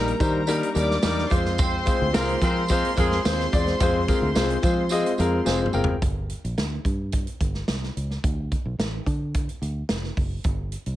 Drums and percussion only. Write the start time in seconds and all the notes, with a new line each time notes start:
0.07 closed hi-hat
0.20 kick, closed hi-hat, tambourine
0.47 closed hi-hat, tambourine
0.63 closed hi-hat
0.75 closed hi-hat, tambourine
0.91 snare
1.02 snare, closed hi-hat, tambourine
1.18 snare
1.30 kick, closed hi-hat, tambourine
1.45 snare
1.58 kick, closed hi-hat, tambourine
1.86 kick, closed hi-hat, tambourine
2.14 snare, closed hi-hat, tambourine
2.29 closed hi-hat
2.41 kick, closed hi-hat, tambourine
2.68 kick, closed hi-hat, tambourine
2.85 closed hi-hat
2.97 kick, closed hi-hat, tambourine
3.11 snare
3.25 snare, closed hi-hat, tambourine
3.40 snare
3.53 kick, closed hi-hat, tambourine
3.67 snare
3.80 kick, closed hi-hat, tambourine
4.08 kick, closed hi-hat, tambourine
4.35 snare, closed hi-hat, tambourine
4.50 closed hi-hat
4.63 kick, closed hi-hat, tambourine
4.89 closed hi-hat, tambourine
5.06 closed hi-hat
5.18 closed hi-hat, tambourine
5.46 snare, tambourine
5.66 mid tom
5.73 tambourine
5.84 floor tom
6.02 kick, closed hi-hat
6.29 closed hi-hat
6.45 closed hi-hat
6.58 snare, closed hi-hat
6.85 kick, closed hi-hat
7.12 kick, closed hi-hat
7.27 closed hi-hat
7.41 kick, closed hi-hat
7.54 snare
7.68 snare, closed hi-hat
7.83 snare
7.97 closed hi-hat
8.11 snare
8.24 kick, closed hi-hat
8.52 kick, closed hi-hat
8.80 snare, closed hi-hat
9.06 kick, closed hi-hat
9.34 kick, closed hi-hat
9.49 closed hi-hat
9.62 closed hi-hat
9.89 snare, closed hi-hat
10.04 snare
10.17 kick, open hi-hat
10.44 kick, closed hi-hat
10.72 closed hi-hat
10.86 closed hi-hat